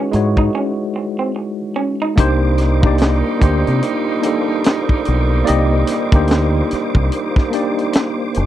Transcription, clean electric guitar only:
0.14 muted clean electric guitar stroke soft
0.38 0.50 D#4 medium
0.55 0.73 C#4 medium
0.96 muted clean electric guitar stroke soft
1.19 1.31 C4 medium
1.36 muted clean electric guitar stroke soft
1.76 1.94 C#4 medium
2.02 2.14 D#4 medium

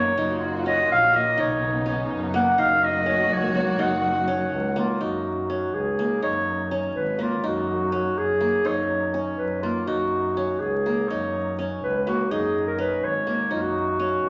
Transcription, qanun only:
0.00 1.13 A#3 medium
0.00 0.66 C#4 medium
0.00 0.17 D#4 medium
0.18 1.37 D#4 medium
0.66 1.85 C#4 medium
1.13 2.33 A#3 medium
1.37 2.58 D#4 medium
1.86 3.06 C#4 medium
2.34 3.54 A#3 medium
2.58 3.78 D#4 medium
3.06 4.27 C#4 medium
3.55 4.76 A#3 medium
3.79 5.00 D#4 medium
4.28 5.49 C#4 medium
4.76 5.99 A#3 medium
5.01 6.22 D#4 medium
5.50 6.71 C#4 medium
5.99 7.18 A#3 medium
6.22 7.43 D#4 medium
6.71 7.92 C#4 medium
7.19 8.40 A#3 medium
7.43 8.64 D#4 medium
7.92 9.14 C#4 medium
8.41 9.63 A#3 medium
8.65 9.87 D#4 medium
9.14 10.36 C#4 medium
9.63 10.86 A#3 medium
9.87 11.10 D#4 medium
10.37 11.58 C#4 medium
10.86 12.07 A#3 medium
11.10 12.31 D#4 medium
11.59 12.78 C#4 medium
12.07 13.26 A#3 medium
12.31 13.50 D#4 medium
12.78 13.99 C#4 medium
13.27 14.29 A#3 medium
13.51 14.29 D#4 medium
13.99 14.29 C#4 medium

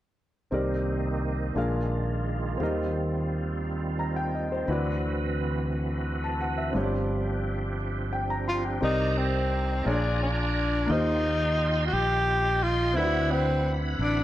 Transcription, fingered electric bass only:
0.52 1.52 C2 soft
1.56 2.56 A#1 medium
2.60 4.64 D#2 soft
4.68 6.71 D2 medium
6.75 8.78 G1 medium
8.83 9.82 C2 medium
9.86 10.86 A#1 medium
10.90 11.89 D#2 medium
11.93 12.97 A#1 medium
12.97 13.96 D2 medium
13.99 14.24 A1 medium

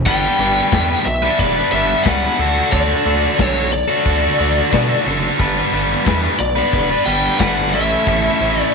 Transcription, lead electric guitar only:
0.06 1.09 G5 loud
1.05 1.40 E5 medium
1.40 1.72 D5 medium
1.72 2.04 E5 medium
2.03 2.73 F#5 loud
2.72 3.41 D5 loud
3.41 3.72 C#5 loud
3.73 5.02 D5 medium
6.40 7.09 D5 medium
7.05 7.39 G5 loud
7.40 7.71 F#5 loud
7.74 8.62 E5 medium
8.62 8.74 D5 medium

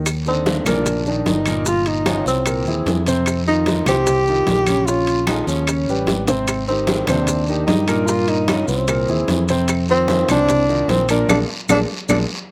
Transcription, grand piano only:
0.27 0.43 D3 medium
0.27 0.43 D4 medium
0.27 0.43 D#4 medium
0.47 0.63 D3 medium
0.47 0.63 D4 medium
0.47 0.63 D#4 medium
0.67 1.00 A#2 medium
0.67 1.00 A#3 medium
0.67 1.00 A#4 medium
1.07 1.40 D#3 medium
1.07 1.40 D4 medium
1.07 1.40 D#4 medium
1.47 1.63 A#2 medium
1.47 1.64 A#3 medium
1.47 1.64 A#4 medium
1.68 2.00 A#2 medium
1.68 2.00 A#3 medium
1.68 2.01 A#4 medium
2.07 2.40 C#3 medium
2.07 2.40 C#4 medium
2.07 2.40 F4 medium
2.47 2.63 A#2 medium
2.47 2.63 A#3 medium
2.47 2.64 A#4 medium
2.68 3.00 E3 medium
2.68 3.00 E4 medium
2.68 3.01 G#4 medium
3.07 3.40 C3 medium
3.07 3.40 C4 medium
3.07 3.40 C5 medium
3.48 3.64 D#3 medium
3.48 3.64 D#4 medium
3.48 3.64 F4 medium
3.68 3.84 D#3 medium
3.68 3.84 D#4 medium
3.68 3.84 F4 medium
3.88 4.21 C3 medium
3.88 4.21 C4 medium
3.88 4.21 C5 medium
4.28 4.61 D#3 medium
4.28 4.61 D#4 medium
4.28 4.61 F4 medium
4.68 4.84 C#3 medium
4.68 4.84 C#4 medium
4.68 4.84 C#5 medium
4.89 5.21 C#3 medium
4.89 5.21 C#4 medium
4.89 5.22 C#5 medium
5.29 5.62 F3 medium
5.29 5.61 F4 medium
5.29 5.62 G#4 medium
5.69 5.85 C#3 medium
5.69 5.85 C#4 medium
5.69 5.86 C#5 medium
5.90 6.22 G3 medium
5.90 6.22 G4 medium
5.90 6.22 B4 medium
6.29 6.62 C3 medium
6.29 6.62 C4 medium
6.29 6.62 C5 medium
6.69 6.85 D#3 medium
6.69 6.85 D#4 medium
6.69 6.86 G4 medium
6.89 7.05 D#3 medium
6.89 7.05 D#4 medium
6.89 7.06 G4 medium
7.09 7.42 C3 medium
7.09 7.42 C4 medium
7.09 7.42 C5 medium
7.49 7.82 D#3 medium
7.49 7.82 D#4 medium
7.49 7.82 G4 medium
7.88 8.05 A#2 medium
7.88 8.05 A#3 loud
7.88 8.05 A#4 medium
8.08 8.41 A#2 medium
8.08 8.41 A#3 medium
8.08 8.42 A#4 medium
8.49 8.82 C#3 medium
8.49 8.82 C#4 medium
8.49 8.82 F4 medium
8.89 9.05 A#2 medium
8.89 9.05 A#3 medium
8.89 9.06 A#4 medium
9.09 9.42 E3 medium
9.09 9.42 E4 medium
9.09 9.42 G#4 medium
9.50 9.82 C3 medium
9.50 9.82 C4 medium
9.50 9.83 C5 medium
9.89 10.05 D#3 medium
9.89 10.06 D#4 medium
9.89 10.06 F4 medium
10.09 10.25 D#3 medium
10.09 10.26 D#4 medium
10.09 10.26 F4 medium
10.29 10.62 C3 medium
10.29 10.62 C4 medium
10.29 10.62 C5 medium
10.69 11.02 D#3 medium
10.69 11.02 D#4 medium
10.69 11.02 F4 medium
11.10 11.26 A#2 medium
11.10 11.26 A#3 medium
11.10 11.26 A#4 medium
11.30 11.43 G#3 loud
11.30 11.43 A#3 medium
11.30 11.43 D4 medium
11.70 11.83 G#3 medium
11.70 11.83 A#3 medium
11.70 11.83 D4 loud
12.10 12.23 G#3 medium
12.10 12.23 A#3 medium
12.10 12.23 D4 medium

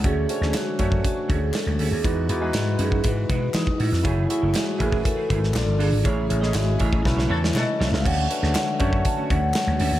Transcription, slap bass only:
0.04 0.25 D2 loud
0.41 0.52 D2 loud
0.80 1.00 F#2 medium
1.29 1.50 D2 medium
1.67 1.77 D2 medium
1.79 1.90 D2 loud
1.91 2.02 D#2 medium
2.05 2.25 E2 loud
2.29 2.50 E2 medium
2.54 2.75 G#2 medium
2.79 3.00 F#2 medium
3.04 3.25 G#2 loud
3.30 3.50 B2 medium
3.54 3.65 E3 loud
3.80 3.90 A2 medium
3.92 4.03 F2 loud
4.05 4.25 F#1 loud
4.43 4.53 F#1 loud
4.80 5.01 A1 medium
5.30 5.51 G#1 medium
5.56 5.66 A#1 loud
5.68 5.78 G1 loud
5.80 5.90 G1 loud
5.92 6.03 G#1 medium
6.05 6.26 A1 loud
6.31 6.51 A1 medium
6.54 6.75 G#1 medium
6.80 7.01 A1 medium
7.05 7.26 B1 loud
7.30 7.51 E2 medium
7.55 7.65 B2 medium
7.80 7.91 B1 medium
7.92 8.03 C#2 medium
8.05 8.26 D2 loud
8.43 8.53 D2 medium
8.80 9.01 F#2 medium
9.30 9.51 D2 medium
9.67 9.78 D2 medium
9.80 9.90 D2 medium
9.92 10.00 D#2 medium

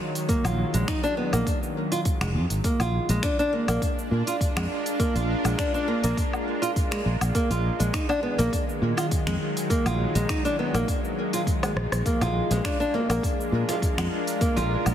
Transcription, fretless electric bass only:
0.45 0.62 A#1 loud
0.74 0.83 A#1 loud
1.33 1.42 A#1 medium
2.21 2.36 F1 loud
2.35 2.45 F2 loud
2.50 2.59 G#1 medium
2.80 2.98 A#1 loud
3.09 3.18 A#1 loud
3.68 3.77 A#1 medium
4.11 4.21 A#2 medium
4.56 4.65 F2 medium
5.15 5.33 A#1 medium
5.45 5.53 A#1 medium
6.04 6.12 A#1 medium
7.06 7.15 A#1 medium
7.21 7.30 A#1 medium
7.50 7.68 A#1 medium
7.80 7.89 A#1 medium
8.39 8.47 A#1 medium
8.82 8.92 A#2 medium
9.27 9.36 F2 medium
9.86 10.04 A#1 loud
10.15 10.24 A#1 loud
10.74 10.83 A#1 medium
11.76 11.86 A#1 medium
11.92 12.00 A#1 medium
12.21 12.39 A#1 loud
12.50 12.59 A#1 medium
13.09 13.18 A#1 medium
13.52 13.62 A#2 medium
13.98 14.06 F2 medium
14.57 14.74 A#1 loud
14.86 14.95 A#1 loud

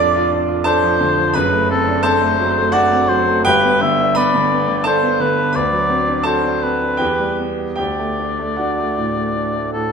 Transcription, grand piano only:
0.00 1.31 F1 medium
0.00 1.31 F2 medium
0.00 0.83 F3 medium
0.00 0.32 D4 medium
0.00 0.15 F4 medium
0.00 0.65 A4 medium
0.00 0.60 D5 medium
0.00 0.64 A5 loud
0.00 0.64 D6 loud
0.15 0.42 F4 medium
0.32 0.59 D4 medium
0.48 0.76 F4 medium
0.64 0.93 D4 medium
0.64 1.31 A4 medium
0.64 1.34 A5 loud
0.83 1.11 F3 medium
1.00 1.28 D3 medium
1.18 1.35 F3 medium
1.34 3.41 F#1 medium
1.34 3.42 F#2 medium
1.34 2.00 B4 medium
1.34 2.03 B5 loud
1.52 1.80 A3 medium
1.71 1.98 C4 medium
1.88 2.15 D4 medium
2.03 2.32 C4 medium
2.03 2.69 A4 medium
2.03 2.72 A5 loud
2.22 2.49 A3 medium
2.40 2.67 F#3 medium
2.57 2.85 A3 medium
2.72 3.02 D4 medium
2.72 3.41 F#4 medium
2.72 3.45 F#5 loud
2.91 3.20 C4 medium
3.10 3.38 F#3 medium
3.29 3.46 A3 medium
3.45 5.51 G1 medium
3.45 5.52 G2 medium
3.45 4.12 G4 medium
3.45 4.16 G5 loud
3.64 3.92 B3 medium
3.82 4.10 D3 medium
3.99 4.27 D4 medium
4.15 4.45 B3 medium
4.15 4.81 B4 medium
4.15 4.85 B5 loud
4.34 4.62 D3 medium
4.52 4.79 B3 medium
4.68 4.96 D3 soft
4.84 5.14 D4 medium
4.84 5.51 A4 medium
4.84 5.54 A5 loud
5.02 5.30 B3 medium
5.20 5.48 D3 medium
5.38 5.55 B3 soft
5.53 6.97 D2 medium
5.53 6.22 B4 medium
5.53 6.26 B5 medium
5.73 6.01 F#3 medium
5.90 6.19 C4 medium
6.08 6.38 D4 medium
6.23 6.56 F#4 medium
6.23 6.96 A4 medium
6.23 6.99 A5 loud
6.44 6.74 D4 medium
6.63 6.93 C4 soft
6.81 7.01 D4 soft
6.97 7.75 E2 medium
6.97 7.57 G4 medium
6.97 7.74 G5 medium
7.20 7.51 G3 soft
7.39 7.71 B3 soft
7.58 7.76 G4 soft
7.76 9.92 D2 medium
7.76 8.53 G4 medium
7.76 8.57 G5 medium
7.99 8.31 A3 soft
8.19 8.51 D4 soft
8.39 8.70 A3 soft
8.56 8.90 D4 soft
8.56 9.70 F#4 soft
8.56 9.73 F#5 medium
8.78 9.09 A3 soft
8.97 9.28 A2 soft
9.17 9.47 A3 soft
9.36 9.67 D4 soft
9.56 9.86 A3 soft
9.75 9.92 A2 soft

